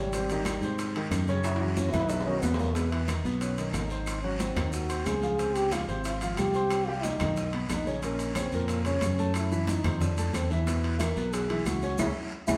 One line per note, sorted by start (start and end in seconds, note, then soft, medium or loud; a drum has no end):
0.00 0.57 G#1 loud
0.00 0.74 G3 medium
0.12 0.27 C3 medium
0.12 0.27 C4 medium
0.12 0.28 C5 medium
0.12 high bongo medium
0.12 high conga soft
0.12 high timbale medium
0.12 long guiro medium
0.12 maracas medium
0.29 0.57 D#3 medium
0.29 0.58 D#4 medium
0.29 0.58 G4 medium
0.29 high bongo soft
0.29 high conga soft
0.29 high timbale medium
0.29 maracas medium
0.45 high bongo medium
0.45 high conga loud
0.45 high timbale medium
0.45 short guiro medium
0.45 claves medium
0.45 maracas medium
0.61 1.08 G#2 medium
0.61 0.90 C3 medium
0.61 0.90 C4 medium
0.61 0.90 C5 medium
0.61 high bongo soft
0.61 short guiro medium
0.61 maracas soft
0.78 high bongo medium
0.78 high conga soft
0.78 high timbale medium
0.78 long guiro medium
0.78 maracas medium
0.95 1.22 D#3 medium
0.95 1.23 D#4 medium
0.95 1.23 G4 medium
0.95 high conga soft
0.95 high timbale medium
1.11 1.88 F#2 loud
1.11 high bongo soft
1.11 low bongo medium
1.11 high conga medium
1.11 high timbale medium
1.11 short guiro medium
1.11 claves medium
1.11 maracas medium
1.27 1.55 C#3 medium
1.27 1.55 C#4 medium
1.27 1.56 C#5 medium
1.27 high bongo soft
1.27 high conga soft
1.27 short guiro medium
1.27 maracas soft
1.44 1.60 E4 medium
1.44 high bongo medium
1.44 high conga soft
1.44 high timbale loud
1.44 long guiro medium
1.44 claves medium
1.44 maracas medium
1.56 high timbale medium
1.60 1.88 E3 medium
1.60 1.77 G#3 medium
1.60 1.88 E4 medium
1.60 1.88 F#4 medium
1.60 high bongo soft
1.60 high conga soft
1.77 1.92 C#4 medium
1.77 high bongo medium
1.77 high conga loud
1.77 short guiro medium
1.77 maracas medium
1.89 2.11 E4 loud
1.89 low timbale medium
1.93 2.39 B1 loud
1.93 2.20 B2 medium
1.93 2.21 B3 medium
1.93 2.21 B4 medium
1.93 high conga loud
1.93 low conga medium
1.93 short guiro medium
1.93 claves medium
1.93 maracas soft
2.00 low timbale medium
2.09 2.25 D#4 loud
2.09 high bongo medium
2.09 high conga soft
2.09 low timbale medium
2.09 long guiro medium
2.09 maracas medium
2.21 low timbale loud
2.26 2.40 D#3 medium
2.26 2.43 C#4 medium
2.26 2.40 D#4 medium
2.26 2.40 F#4 medium
2.26 high conga soft
2.42 3.19 E2 medium
2.42 2.70 B2 medium
2.42 2.57 B3 medium
2.42 2.70 B3 medium
2.42 2.70 B4 medium
2.42 high bongo soft
2.42 low bongo medium
2.42 high conga medium
2.42 low timbale medium
2.42 short guiro medium
2.42 claves medium
2.42 maracas medium
2.54 2.77 A#3 medium
2.54 low timbale loud
2.59 high bongo soft
2.59 high conga medium
2.59 short guiro medium
2.59 maracas soft
2.65 low timbale medium
2.75 3.03 B2 medium
2.75 2.91 G#3 medium
2.75 3.03 B3 medium
2.75 3.03 B4 medium
2.75 high bongo medium
2.75 high conga soft
2.75 high timbale medium
2.75 long guiro medium
2.75 maracas medium
2.91 3.02 E3 medium
2.91 high bongo soft
2.91 high conga soft
2.91 high timbale medium
3.08 3.22 D#3 medium
3.08 3.22 D#4 medium
3.08 3.22 D#5 medium
3.08 high bongo medium
3.08 high conga medium
3.08 high timbale loud
3.08 short guiro medium
3.08 claves medium
3.08 maracas medium
3.24 3.70 B1 medium
3.24 3.52 B2 medium
3.24 3.52 B3 medium
3.24 3.52 B4 medium
3.24 high bongo soft
3.24 short guiro medium
3.24 maracas soft
3.41 3.75 C#4 medium
3.41 high bongo medium
3.41 high timbale medium
3.41 long guiro medium
3.41 maracas medium
3.58 3.85 D#3 medium
3.58 3.85 D#4 medium
3.58 3.85 D#5 medium
3.58 high conga soft
3.58 high timbale medium
3.58 maracas medium
3.73 4.50 G#1 medium
3.73 4.21 D#4 loud
3.73 high bongo soft
3.73 low bongo medium
3.73 high conga medium
3.73 high timbale medium
3.73 short guiro medium
3.73 claves medium
3.73 maracas medium
3.89 4.18 C4 medium
3.89 4.18 C5 medium
3.89 4.19 C6 medium
3.89 high bongo soft
3.89 short guiro medium
3.89 maracas soft
4.06 high bongo medium
4.06 high conga soft
4.06 high timbale medium
4.06 long guiro medium
4.06 claves medium
4.06 maracas medium
4.22 4.51 F#3 medium
4.22 4.42 C#4 medium
4.22 4.51 F#4 medium
4.22 4.51 F#5 medium
4.22 high bongo soft
4.22 high conga soft
4.39 4.74 C4 medium
4.39 high bongo medium
4.39 high conga loud
4.39 high timbale medium
4.39 short guiro medium
4.39 maracas medium
4.56 5.02 D#2 medium
4.56 4.84 D#3 medium
4.56 4.84 D#4 medium
4.56 4.84 D#5 medium
4.56 high bongo soft
4.56 high conga loud
4.56 low conga medium
4.56 high timbale loud
4.56 short guiro medium
4.56 claves medium
4.56 maracas soft
4.72 5.08 F#4 medium
4.72 high bongo medium
4.72 high conga soft
4.72 long guiro medium
4.72 maracas medium
4.89 5.17 C4 medium
4.89 5.17 C5 medium
4.89 5.17 C6 medium
4.89 high conga soft
4.89 high timbale medium
4.89 maracas medium
5.05 5.83 C#2 loud
5.05 5.57 G#4 loud
5.05 high bongo soft
5.05 low bongo medium
5.05 high conga medium
5.05 high timbale medium
5.05 low timbale medium
5.05 short guiro medium
5.05 claves medium
5.05 maracas medium
5.22 5.36 F3 medium
5.22 5.36 F4 medium
5.22 5.37 F5 medium
5.22 high bongo soft
5.22 high conga medium
5.22 short guiro medium
5.22 maracas soft
5.38 5.66 C3 medium
5.38 5.67 C4 medium
5.38 5.67 C5 medium
5.38 high bongo medium
5.38 high conga soft
5.38 high timbale medium
5.38 long guiro medium
5.38 maracas medium
5.55 5.74 G4 loud
5.55 high bongo soft
5.55 high timbale medium
5.55 maracas medium
5.71 5.86 F3 medium
5.71 6.04 F4 medium
5.71 5.86 F4 medium
5.71 5.86 F5 medium
5.71 high bongo medium
5.71 high conga medium
5.71 high timbale loud
5.71 short guiro medium
5.71 claves medium
5.71 maracas medium
5.88 6.35 G#1 medium
5.88 6.15 C3 medium
5.88 6.16 C4 medium
5.88 6.16 C5 medium
5.88 high bongo soft
5.88 short guiro medium
5.88 maracas soft
6.04 6.39 F4 medium
6.04 high bongo medium
6.04 high conga soft
6.04 high timbale medium
6.04 long guiro medium
6.04 maracas medium
6.21 6.49 F3 medium
6.21 6.49 F4 medium
6.21 6.49 F5 medium
6.21 high conga soft
6.21 high timbale medium
6.21 maracas medium
6.37 7.15 C2 medium
6.37 6.88 G4 loud
6.37 high bongo soft
6.37 low bongo medium
6.37 high conga medium
6.37 high timbale medium
6.37 short guiro medium
6.37 claves medium
6.37 maracas medium
6.54 6.82 C4 medium
6.54 6.82 C5 medium
6.54 6.82 C6 medium
6.54 high bongo soft
6.54 high conga soft
6.54 short guiro medium
6.54 maracas soft
6.70 high bongo medium
6.70 high conga soft
6.70 high timbale medium
6.70 long guiro medium
6.70 claves medium
6.70 maracas medium
6.87 7.15 G3 medium
6.87 7.05 F4 loud
6.87 7.15 G4 medium
6.87 7.15 G5 medium
6.87 high bongo soft
7.03 7.53 D#4 medium
7.03 high bongo medium
7.03 high conga medium
7.03 high timbale medium
7.03 short guiro medium
7.03 maracas medium
7.19 7.67 B1 medium
7.19 7.48 D#3 medium
7.19 7.48 D#4 medium
7.19 7.48 D#5 medium
7.19 high conga loud
7.19 low conga medium
7.19 high timbale medium
7.19 short guiro medium
7.19 claves medium
7.19 maracas soft
7.36 high bongo medium
7.36 high conga soft
7.36 long guiro medium
7.36 maracas medium
7.53 7.81 B3 medium
7.53 7.81 B4 medium
7.53 7.81 B5 medium
7.53 high timbale medium
7.69 8.47 A#1 medium
7.69 8.04 D#4 medium
7.69 high bongo soft
7.69 low bongo medium
7.69 high conga medium
7.69 high timbale medium
7.69 low timbale medium
7.69 short guiro medium
7.69 claves medium
7.69 maracas medium
7.86 8.00 C#3 medium
7.86 8.01 C#4 medium
7.86 8.01 C#5 medium
7.86 high bongo soft
7.86 short guiro medium
7.86 maracas soft
8.02 8.31 A#2 medium
8.02 8.31 A#3 medium
8.02 8.38 C#4 medium
8.02 8.31 A#4 medium
8.02 high bongo medium
8.02 high conga soft
8.02 high timbale medium
8.02 long guiro medium
8.02 maracas medium
8.19 high bongo soft
8.19 high conga soft
8.19 high timbale medium
8.19 maracas medium
8.35 8.50 C#3 medium
8.35 8.70 C4 medium
8.35 8.50 C#4 medium
8.35 8.50 C#5 medium
8.35 high bongo medium
8.35 high conga loud
8.35 high timbale loud
8.35 short guiro medium
8.35 claves medium
8.35 maracas medium
8.52 8.99 F2 medium
8.52 8.80 A#2 medium
8.52 8.80 A#3 medium
8.52 8.80 A#4 medium
8.52 high bongo soft
8.52 short guiro medium
8.52 maracas soft
8.68 8.85 A#3 medium
8.68 high bongo medium
8.68 high conga soft
8.68 high timbale medium
8.68 long guiro medium
8.68 maracas medium
8.85 9.13 C#3 medium
8.85 9.13 C#4 medium
8.85 9.38 C#4 medium
8.85 9.13 C#5 medium
8.85 high timbale medium
8.85 maracas medium
9.01 9.79 F#2 loud
9.01 high bongo soft
9.01 low bongo medium
9.01 high conga medium
9.01 high timbale medium
9.01 low timbale medium
9.01 short guiro medium
9.01 claves medium
9.01 maracas medium
9.18 9.46 A3 medium
9.18 9.46 A4 medium
9.18 9.46 A5 medium
9.18 high bongo soft
9.18 high conga soft
9.18 short guiro medium
9.18 maracas soft
9.34 9.70 E4 loud
9.34 high bongo medium
9.34 high timbale medium
9.34 long guiro medium
9.34 claves medium
9.34 maracas medium
9.51 9.79 E3 medium
9.51 9.79 E4 medium
9.51 9.79 E5 medium
9.51 high bongo soft
9.51 high conga soft
9.51 maracas medium
9.67 10.02 D#4 loud
9.67 high bongo medium
9.67 high conga loud
9.67 high timbale medium
9.67 short guiro medium
9.67 maracas medium
9.84 10.30 F2 loud
9.84 10.12 C3 medium
9.84 10.12 C4 medium
9.84 10.12 C5 medium
9.84 high bongo soft
9.84 high conga medium
9.84 low conga medium
9.84 high timbale medium
9.84 short guiro medium
9.84 claves medium
9.84 maracas soft
10.01 10.37 D4 medium
10.01 high bongo medium
10.01 high conga soft
10.01 low conga medium
10.01 long guiro medium
10.01 maracas medium
10.17 10.45 A3 medium
10.17 10.45 A4 medium
10.17 10.45 A5 medium
10.17 high conga soft
10.17 high timbale medium
10.17 maracas medium
10.33 11.11 E2 loud
10.33 10.53 C4 medium
10.33 high bongo soft
10.33 low bongo medium
10.33 high conga medium
10.33 high timbale medium
10.33 short guiro medium
10.33 claves medium
10.33 maracas medium
10.50 10.64 E3 medium
10.50 10.64 E4 medium
10.50 11.01 E4 medium
10.50 10.64 E5 medium
10.50 high bongo soft
10.50 short guiro medium
10.50 maracas soft
10.67 10.94 B2 medium
10.67 10.94 B3 medium
10.67 10.94 B4 medium
10.67 high bongo medium
10.67 high conga soft
10.67 high timbale medium
10.67 long guiro medium
10.67 maracas medium
10.84 high bongo soft
10.84 high timbale medium
11.00 11.14 E3 medium
11.00 11.14 E4 medium
11.00 11.35 A#4 loud
11.00 11.14 E5 medium
11.00 high bongo medium
11.00 high conga loud
11.00 high timbale loud
11.00 short guiro medium
11.00 claves medium
11.00 maracas medium
11.16 11.62 B1 medium
11.16 11.44 B2 medium
11.16 11.44 B3 medium
11.16 11.44 B4 medium
11.16 high bongo soft
11.16 short guiro medium
11.16 maracas soft
11.33 11.67 G#4 medium
11.33 high bongo medium
11.33 high conga soft
11.33 high timbale medium
11.33 long guiro medium
11.33 maracas medium
11.49 11.77 E3 medium
11.49 11.77 E4 medium
11.49 11.77 E5 medium
11.49 high conga soft
11.49 high timbale medium
11.66 11.97 C#2 loud
11.66 11.99 F#4 medium
11.66 high bongo soft
11.66 low bongo medium
11.66 high conga medium
11.66 high timbale medium
11.66 short guiro medium
11.66 claves medium
11.66 maracas medium
11.82 11.96 C#4 medium
11.82 11.97 C#5 medium
11.82 11.97 C#6 medium
11.82 high bongo soft
11.82 high conga soft
11.82 short guiro medium
11.82 maracas soft
11.98 12.11 C#2 loud
11.98 12.10 C#4 loud
11.98 12.10 E4 loud
11.98 12.07 E4 medium
11.98 12.10 G#4 medium
11.98 low bongo loud
11.98 high conga loud
11.98 high timbale loud
11.98 long guiro loud
11.98 claves loud
11.98 maracas loud
12.47 12.57 C#2 loud
12.47 12.57 C#4 medium
12.47 12.56 E4 loud
12.47 12.57 E4 medium
12.47 12.57 G#4 medium
12.47 low bongo loud
12.47 high conga loud
12.47 high timbale loud
12.47 long guiro loud
12.47 claves loud
12.47 maracas loud